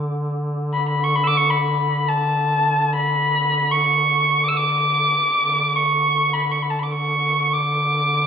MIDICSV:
0, 0, Header, 1, 3, 480
1, 0, Start_track
1, 0, Tempo, 500000
1, 7937, End_track
2, 0, Start_track
2, 0, Title_t, "Violin"
2, 0, Program_c, 0, 40
2, 703, Note_on_c, 0, 83, 71
2, 845, Note_off_c, 0, 83, 0
2, 854, Note_on_c, 0, 83, 72
2, 997, Note_on_c, 0, 85, 79
2, 1012, Note_off_c, 0, 83, 0
2, 1114, Note_on_c, 0, 83, 81
2, 1129, Note_off_c, 0, 85, 0
2, 1192, Note_on_c, 0, 88, 64
2, 1207, Note_off_c, 0, 83, 0
2, 1225, Note_on_c, 0, 86, 88
2, 1239, Note_off_c, 0, 88, 0
2, 1320, Note_on_c, 0, 85, 88
2, 1335, Note_off_c, 0, 86, 0
2, 1446, Note_on_c, 0, 83, 73
2, 1461, Note_off_c, 0, 85, 0
2, 2003, Note_on_c, 0, 81, 83
2, 2018, Note_off_c, 0, 83, 0
2, 2829, Note_off_c, 0, 81, 0
2, 2837, Note_on_c, 0, 83, 92
2, 3566, Note_on_c, 0, 85, 78
2, 3581, Note_off_c, 0, 83, 0
2, 4265, Note_on_c, 0, 86, 96
2, 4280, Note_off_c, 0, 85, 0
2, 4307, Note_on_c, 0, 88, 72
2, 4321, Note_off_c, 0, 86, 0
2, 4390, Note_on_c, 0, 86, 96
2, 4404, Note_off_c, 0, 88, 0
2, 5531, Note_on_c, 0, 85, 79
2, 5546, Note_off_c, 0, 86, 0
2, 6080, Note_on_c, 0, 83, 72
2, 6094, Note_off_c, 0, 85, 0
2, 6254, Note_on_c, 0, 85, 63
2, 6269, Note_off_c, 0, 83, 0
2, 6359, Note_on_c, 0, 83, 60
2, 6373, Note_off_c, 0, 85, 0
2, 6436, Note_on_c, 0, 81, 60
2, 6451, Note_off_c, 0, 83, 0
2, 6521, Note_on_c, 0, 83, 53
2, 6535, Note_off_c, 0, 81, 0
2, 6558, Note_on_c, 0, 86, 49
2, 6572, Note_off_c, 0, 83, 0
2, 6646, Note_on_c, 0, 85, 78
2, 6660, Note_off_c, 0, 86, 0
2, 7229, Note_on_c, 0, 86, 78
2, 7244, Note_off_c, 0, 85, 0
2, 7937, Note_off_c, 0, 86, 0
2, 7937, End_track
3, 0, Start_track
3, 0, Title_t, "Duduk"
3, 0, Program_c, 1, 69
3, 0, Note_on_c, 1, 50, 56
3, 5017, Note_off_c, 1, 50, 0
3, 5180, Note_on_c, 1, 50, 63
3, 7937, Note_off_c, 1, 50, 0
3, 7937, End_track
0, 0, End_of_file